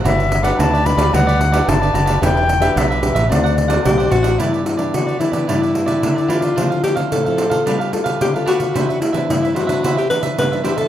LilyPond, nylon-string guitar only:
\new Staff \with { instrumentName = "Nylon-string guitar" } { \time 4/4 \key d \major \tempo 4 = 110 << { <d' fis' b'>8. <d' fis' b'>8. <d' fis' b'>16 r16 <d' fis' b'>8 r16 <d' fis' b'>8. <d' fis' b'>16 r16 | <d' g' b'>8 r16 <d' g' b'>8. <d' g' b'>16 r16 <a c' fis'>8. <a c' fis'>8. <a c' fis'>8 | \key g \major <e b d'>8 <e b d'>16 <e b d'>8. <e b d'>16 <e b d'>8. <e b d'>8. r16 <e b d'>8 | <f c' e'>8 <f c' e'>8. <f c' e'>8 <b f' a'>8. <b f' a'>8. <b f' a'>8. |
<e b d'>8 r16 <e b d'>8. <e b d'>16 <e b d'>8. <e b d'>8 r16 <e b d'>16 <e b d'>8 | } \\ { g4 d4 g4 d4 | e4 b,4 d4 a,4 | g,4 d4 g,4 d4 | d4 a,4 g4 d4 |
c4 g,4 c4 g,4 | } >> }